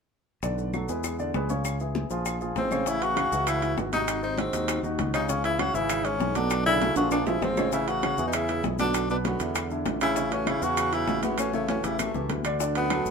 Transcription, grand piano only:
0.43 D3 D4 D5
0.74 F#3 F#4 A4
0.89 G#3 G#4 B4
1.19 D3 D4 D5
1.34 G#3 G#4 B4
1.50 C#3 C#4 C#5
1.81 E3 E4 G#4
2.11 F3 F4 G#4
2.41 F3 F4 G#4
2.71 C#3 C#4 C#5
2.87 C#3 C#4 C#5
3.01 E3 E4 F#4
3.17 C#3 C#4 C#5
3.32 E3 E4 F#4
3.62 E3 E4 F#4
3.92 D#3 D#4 F#4
4.22 C3 C4 C5
4.38 D#3 D#4 F#4
4.53 D#3 D#4 F#4
4.83 D#3 D#4 F#4
5.14 C#3 C#4 C#5
5.29 C#3 C#4 C#5
5.44 E3 E4 G#4
5.59 C#3 C#4 C#5
5.74 E3 E4 G#4
6.04 E3 E4 G#4
6.35 F#3 F#4 A4
6.66 D3 D4 D5
6.81 F#3 F#4 A4
6.96 F3 F4 G#4
7.27 F3 F4 G#4
7.57 C#3 C#4 C#5
7.73 C#3 C#4 C#5
7.88 E3 E4 G#4
8.03 C#3 C#4 C#5
8.18 E3 E4 G#4
8.49 E3 E4 G#4
8.80 D3 D4 F#4
9.10 B2 B3 B4
9.25 D3 D4 F#4
9.41 D3 D4 E4
9.71 D3 D4 E4
10.01 C#3 C#4 C#5
10.17 C#3 C#4 C#5
10.32 E3 E4 F#4
10.47 C#3 C#4 C#5
10.62 E3 E4 F#4
10.92 E3 E4 F#4
11.22 E3 E4 F#4
11.53 C#3 C#4 C#5
11.68 E3 E4 F#4
11.84 E3 E4 G4
12.15 E3 E4 G4
12.45 D3 D4 D5
12.61 D3 D4 D5
12.90 F#3 F#4 A4

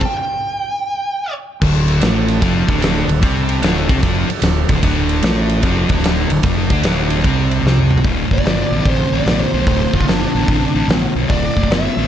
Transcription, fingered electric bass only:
1.62 D1
2.01 A1
2.42 F1
2.68 D1
3.08 D1
3.23 C2
3.62 D1
3.89 C2
4.03 F1
4.29 muted fingered electric bass stroke
4.42 D1
4.69 D1
4.83 D1
5.23 A1
5.63 F1
5.89 D1
6.30 D1
6.43 F1
6.70 D2
6.84 D1
7.25 C2
7.63 C2
8.04 D1
8.31 F#1
8.45 F#1
8.71 A1
8.85 A1
9.12 A1
9.26 A1
9.53 B1
9.67 D1
9.93 F#1
10.07 F#1
10.35 A1
10.48 A1
10.75 A1
10.88 A1
11.15 B1
11.30 D1
11.57 F#1
11.70 F#1
11.97 A1

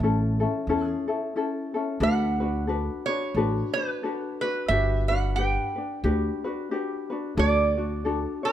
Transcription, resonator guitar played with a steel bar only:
Already playing: A4
0.83 G#4
2.03 F#5
3.06 C#5
3.74 B4
4.41 B4
4.68 E5
5.08 F#5
5.36 G5
7.39 D5
8.45 B4

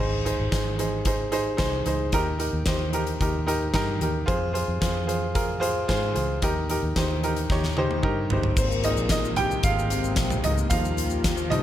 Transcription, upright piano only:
Already playing: G#2 D#4 G#4 C5
0.25 D#4 G#4 C5
0.51 D#4 G#4 C5
0.78 D#4 G#4 C5
1.06 D#4 G#4 C5
1.32 D#4 G#4 C5
1.57 D#4 G#4 C5
1.86 D#4 G#4 C5
2.13 D#3 D#4 G4 A#4
2.39 D#4 G4 A#4
2.67 D#4 G4 C5
2.93 D#4 G4 A#4
3.21 D#4 G4 A#4
3.47 D#4 G4 A#4
3.74 D#4 G4 A#4
4.00 D#4 G4 A#4
4.26 F4 G#4 C5
4.53 F4 G#4 C5
4.81 F4 G#4 C5
5.07 F4 G#4 C5
5.34 F4 G#4 A#4
5.60 F4 G#4 C5
5.88 F4 G#4 C5
6.14 F4 G#4 C5
6.43 D#3 D#4 G4 A#4
6.69 D#4 G4 A#4
6.96 D#4 G4 C5
7.23 D#4 G4 A#4
7.50 D#4 G4 C#5
7.77 D#4 G4 C5
8.03 D#4 G4 A#4
8.31 D#4 G4 C5
8.58 C4 C5
8.84 G#3 A#3 C4 D#4 D#5
9.11 D#4 D#5
9.37 G4 G5
9.64 F4 F5
10.44 D#4 D#5
10.70 F3 G3 D#4 F4 F5
11.50 F3 G3 D#4 D#5

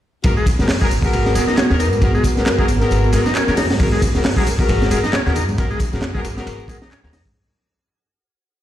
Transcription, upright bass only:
0.24 G#1
0.59 G#2
0.69 F#2
0.91 G#1
1.13 G#1
1.35 G#2
1.70 D#2
1.93 G#2
2.02 G#1
2.37 G#2
2.46 F#2
2.69 G#1
2.91 G#1
3.14 G#2
3.48 D#2
3.71 G#2
3.80 G#1
4.16 G#2
4.25 F#2
4.47 G#1
4.69 G#1
4.91 G#2
5.26 D#2
5.48 G#2
5.58 G#1
5.93 G#2
6.02 F#2
6.24 G#1
6.47 G#1
6.68 G#2
7.04 D#2
7.25 G#2

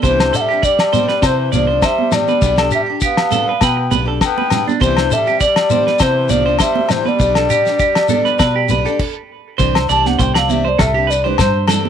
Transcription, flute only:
0.05 C5
0.36 F#5
0.41 E5
0.64 D5
1.25 C5
1.55 D5
1.85 E5
2.14 D5
2.74 E5
3.04 F5
3.62 G5
4.23 G5
4.82 C5
5.13 E5
5.40 D5
6.02 C5
6.30 D5
6.60 E5
6.91 C5
7.08 D5
9.91 A5
10.06 F#5
10.21 G5
10.37 F5
10.50 E5
10.68 D5
10.81 E5
11.10 D5
11.28 B4
11.40 C5

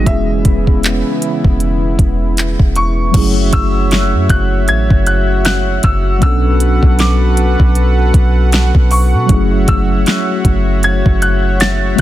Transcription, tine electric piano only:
0.03 G#3 B3 C#4
0.08 E4 G#4
3.11 F#3 G#3 C#4
3.16 A3 E4 G#4
6.19 F#3 B3 C#4
6.24 D4 A4
9.26 F#3 A3 C#4
9.31 E4 G#4
11.96 G#3 B3

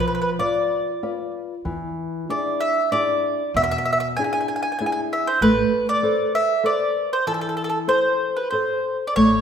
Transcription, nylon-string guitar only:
Already playing: F3
0.39 F4 B4 D5
1.03 F4 B4 D5
1.65 E3
2.29 D4 E4 G#4
2.92 D4 E4 G#4
3.56 B2
4.19 D4 E4 G#4
4.80 D4 E4 G#4
5.42 A3
6.03 A4 B4 C5
6.64 A4 B4 C5
7.27 E3
7.87 A4 C5
8.52 A4 C5
9.17 A3

